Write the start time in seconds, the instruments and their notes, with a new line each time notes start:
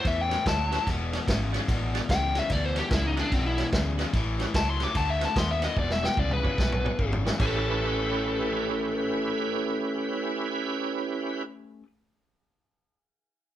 0.05 fingered electric bass E2, overdriven electric guitar A2 E3, lead electric guitar E5, kick, snare, ride
0.21 lead electric guitar G5
0.29 tonewheel organ C#4 F#4 G4 B4, snare, ride
0.46 fingered electric bass D2, overdriven electric guitar A2 F#3, lead electric guitar A5, kick, snare, ride
0.70 overdriven electric guitar A2 F#3, tonewheel organ C#4 F#4 G4 B4, snare, ride
0.87 fingered electric bass E1, overdriven electric guitar E2 B2, kick, snare, ride
1.12 tonewheel organ D4 F#4 G#4 C#5, snare, ride
1.28 fingered electric bass G#1, overdriven electric guitar E2 C#3, kick, snare, ride
1.52 overdriven electric guitar E2 C#3, tonewheel organ D4 F#4 G#4 C#5, snare, ride
1.68 fingered electric bass A1, overdriven electric guitar E2 B2, kick, snare, ride
1.94 tonewheel organ D4 F#4 G#4 D5, snare, ride
2.09 fingered electric bass C#2, overdriven electric guitar E2 C#3, lead electric guitar G5, kick, snare, ride
2.35 overdriven electric guitar E2 C#3, tonewheel organ D4 F#4 G#4 C#5, lead electric guitar E5, snare, ride
2.49 fingered electric bass D2, overdriven electric guitar E2 B2, lead electric guitar D5, kick, snare, ride
2.65 lead electric guitar C5
2.75 tonewheel organ D4 F#4 G#4 C#5, lead electric guitar G4, snare, ride
2.91 fingered electric bass C#2, overdriven electric guitar E2 C#3, lead electric guitar E4, kick, snare, ride
3.06 lead electric guitar D#4
3.16 overdriven electric guitar E2 C#3, tonewheel organ D4 F#4 G#4 B4, lead electric guitar D4, snare, ride
3.31 fingered electric bass B1, overdriven electric guitar E2 B2, lead electric guitar C4, kick, snare, ride
3.46 lead electric guitar E4
3.57 tonewheel organ D4 F#4 G#4 C#5, snare, ride
3.72 fingered electric bass D2, overdriven electric guitar E2 C#3, kick, snare, ride
3.97 overdriven electric guitar E2 C#3, tonewheel organ D4 F#4 G#4 B4, snare, ride
4.13 fingered electric bass A1, overdriven electric guitar A2 E3, kick, snare, ride
4.39 tonewheel organ C#4 F#4 G4 B4, snare, ride
4.54 fingered electric bass C#2, overdriven electric guitar A2 F#3, lead electric guitar A5, kick, snare, ride
4.69 lead electric guitar C6
4.80 overdriven electric guitar A2 F#3, tonewheel organ C#4 F#4 G4 B4, lead electric guitar D6, snare, ride
4.95 fingered electric bass D2, overdriven electric guitar D3 A3, lead electric guitar A5, kick, snare, ride
5.10 lead electric guitar E5
5.20 tonewheel organ C4 E4 F#4 B4, snare, ride
5.25 lead electric guitar A5
5.36 fingered electric bass D#2, overdriven electric guitar D3 B3, lead electric guitar C6, kick, snare, ride
5.51 lead electric guitar E5
5.61 overdriven electric guitar D3 B3, tonewheel organ C4 E4 F#4 B4, lead electric guitar D#5, snare, ride
5.76 fingered electric bass E1, overdriven electric guitar E2 B2, lead electric guitar D5, kick, high tom
5.90 lead electric guitar E5, snare
6.02 tonewheel organ D4 F#4 G#4 C#5, lead electric guitar G5, snare
6.17 fingered electric bass C#2, overdriven electric guitar E2 C#3, lead electric guitar D5, kick, mid tom
6.31 lead electric guitar B4, mid tom
6.43 overdriven electric guitar E2 C#3, tonewheel organ D4 F#4 G#4 C#5, kick
6.58 fingered electric bass B1, overdriven electric guitar E2 B2, kick, snare
6.72 mid tom
6.84 tonewheel organ D4 F#4 G#4 C#5, mid tom
6.99 fingered electric bass G#1, overdriven electric guitar E2 C#3, kick
7.13 floor tom
7.24 overdriven electric guitar E2 C#3, tonewheel organ D4 F#4 G#4 C#5, snare
7.39 fingered electric bass A1, overdriven electric guitar A3 C#4 G4, tonewheel organ C#4 E4 G4 B4, lead electric guitar A4, kick, crash
7.43 overdriven electric guitar B4